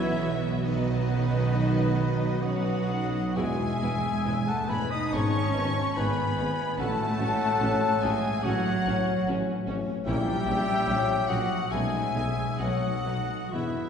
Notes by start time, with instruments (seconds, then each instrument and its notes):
Already playing: tuba B1, double bass section B1, trombone section B2 F#3, harp B2 F#3 B3 F#4 F#5, cello section E3, viola section F#3 B3, french horn section B3 F#4, trumpet E4, violin section F#4 B4 E5, oboe C#5, flute E5
0.19 harp F#3
0.42 harp F#4
0.62 trombone section B2 F#3, cello section D#3, viola section F#3 B3, french horn section B3, trumpet D#4, violin section F#4 B4 D#5, oboe B4, harp B4, flute D#5
0.88 harp F#4
1.09 french horn section C#4, harp F#5
1.33 harp B5
1.54 french horn section D#4
1.77 harp F#4
1.98 french horn section B3
2.21 harp F#4
2.42 trombone section B2 F#3, viola section F#3 B3, cello section F#3, harp F#3, french horn section C#4, violin section F#4 B4 F#5, trumpet F#4, oboe D#5, flute F#5
2.66 harp B3
2.90 harp F#3, french horn section D#4
3.14 harp B3
3.35 tuba E1, double bass section E2, harp E2, trombone section B2 G#3, viola section G#3 B3, cello section G#3, french horn section B3 E4, violin section E4 B4 G#5, trumpet G#4, oboe E5, flute G#5
3.60 harp B2
3.81 tuba E1, double bass section E2, viola section G#3 B3, harp G#3, violin section E4 B4
4.06 harp E4
4.24 tuba E1, double bass section E2, viola section G#3 B3, violin section E4 B4
4.47 cello section A3, harp G#4, trumpet A4, oboe F#5, flute A5, violin section A5
4.68 tuba E1, double bass section E2, viola section G#3 B3, cello section B3, violin section E4 B4 B5, trumpet B4, harp E5, oboe G#5, flute B5
4.89 cello section D#4, trumpet D#5, oboe B5, flute D#6, violin section D#6
5.11 tuba G#1, double bass section G#1, trombone section G#2 G#3, harp G#2, viola section G#3 B3, french horn section B3 D#4, cello section C#4, violin section D#4 B4 C#6, trumpet C#5, oboe A5, flute C#6
5.34 harp D#3
5.53 tuba G#1, double bass section G#1, viola section G#3 B3, violin section D#4 B4
5.77 harp D#4
5.95 tuba G#1, double bass section G#1, viola section G#3 B3, cello section B3, violin section D#4 B4 B5, harp B4, trumpet B4, oboe G#5, flute B5
6.18 harp G#4
6.36 tuba G#1, double bass section G#1, violin section D#4 B4, harp D#5
6.41 viola section G#3 B3
6.77 double bass section A1, tuba A1, harp A2, trombone section A2 F#3, cello section A3, violin section C#4 F#4 A5, french horn section C#4 F#4, trumpet A4, oboe F#5, flute A5
6.81 viola section C#4
6.99 harp A3
7.19 tuba A1, double bass section A1, harp F#3, violin section C#4 F#4, viola section C#4
7.40 harp F#4
7.59 tuba A1, double bass section A1, violin section C#4 F#4, viola section C#4
7.82 harp F#4
8.01 tuba A1, double bass section A1, cello section G#3, violin section C#4 F#4 G#5, viola section C#4, trumpet G#4, oboe E5, flute G#5
8.24 harp C#6
8.43 tuba A1, double bass section A1, trombone section A2 F#3, cello section F#3, french horn section C#4 F#4, violin section C#4 F#4 F#5, viola section C#4, trumpet F#4, oboe C#5, flute F#5
8.66 harp F#4
8.86 double bass section A1, tuba A1, violin section C#4 F#4, viola section C#4, harp C#5
9.06 harp F#4
9.26 double bass section A1, tuba A1, harp F#3, violin section C#4 F#4, viola section C#4
9.47 harp A3
9.66 tuba A1, double bass section A1, harp F#3, violin section C#4 F#4, viola section C#4
9.87 harp A3
10.05 tuba A#1, double bass section A#1, harp A#2, trombone section A#2 A#3, cello section G3, viola section A#3 C#4, violin section C#4 E4 G5, french horn section C#4 E4, trumpet G4, oboe E5, flute G5
10.27 harp G3
10.45 tuba A#1, double bass section A#1, harp A#3, viola section A#3 C#4, violin section C#4 E4
10.68 harp E4
10.86 double bass section A#1, tuba A#1, viola section A#3 C#4, violin section C#4 E4, harp C#5
11.08 harp A#4
11.27 double bass section A#1, tuba A#1, cello section F#3, viola section A#3 C#4, violin section C#4 E4 F#5, trumpet F#4, oboe D#5, harp E5, flute F#5
11.50 harp C#6
11.70 tuba B1, double bass section B1, trombone section B2 A3, harp B2, cello section G#3, viola section A3 B3, violin section C#4 D#4 G#5, french horn section C#4 D#4, trumpet G#4, oboe E5, flute G#5
11.92 harp F#3
12.14 tuba B1, double bass section B1, harp A3, viola section A3 B3, violin section C#4 D#4
12.36 harp D#4
12.58 tuba B1, double bass section B1, cello section F#3, viola section A3 B3, violin section C#4 D#4 F#5, trumpet F#4, harp C#5, oboe D#5, flute F#5
12.82 harp A4
13.05 tuba B1, double bass section B1, viola section A3 B3, violin section C#4 D#4
13.28 harp C#6
13.52 tuba E1, double bass section E2, trombone section B2 G#3, harp E3, cello section E3, viola section G#3 B3, violin section B3 E4 E5, french horn section B3 E4, trumpet E4, oboe B4, flute E5
13.76 harp G#3